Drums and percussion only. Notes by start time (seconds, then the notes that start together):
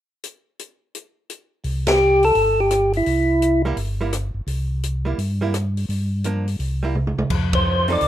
0.24 closed hi-hat
0.59 closed hi-hat
0.95 closed hi-hat
1.30 closed hi-hat
1.64 open hi-hat
1.87 snare, ride
2.23 open hi-hat
2.35 open hi-hat
2.71 cross-stick, closed hi-hat
2.93 open hi-hat
3.06 open hi-hat
3.42 closed hi-hat
3.77 open hi-hat
4.13 cross-stick, closed hi-hat
4.47 open hi-hat
4.83 closed hi-hat
5.19 open hi-hat
5.54 cross-stick, closed hi-hat
5.77 open hi-hat
5.90 open hi-hat
6.24 closed hi-hat
6.48 open hi-hat
6.60 open hi-hat
6.95 mid tom
7.07 mid tom
7.18 mid tom
7.30 kick, crash
7.53 kick, ride
7.88 open hi-hat
8.01 open hi-hat